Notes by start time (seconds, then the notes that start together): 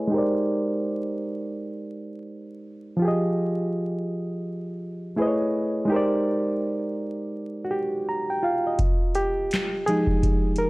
Already playing: A3 E4 G#4 B4 C#5 D#5 G#5
0.07 G#3 D#4
0.12 G4 A#4
0.16 C5 D5
2.97 F3 F4
3.02 G4 G#4
3.08 D#5
5.16 A3 E4 G#4 B4
5.21 C5 D#5
5.27 C#5
5.85 G#3 D#4
5.90 G4 A#4
5.94 C5 D5
7.64 F#4
7.71 G4
8.09 A#5
8.30 G5
8.43 F4 F5
8.67 D#5
8.79 kick, closed hi-hat
9.15 G4, closed hi-hat
9.51 snare, clap, closed hi-hat
9.86 F3 G#3 D#4 G#4, closed hi-hat
10.07 kick
10.23 kick, closed hi-hat
10.56 A#4, closed hi-hat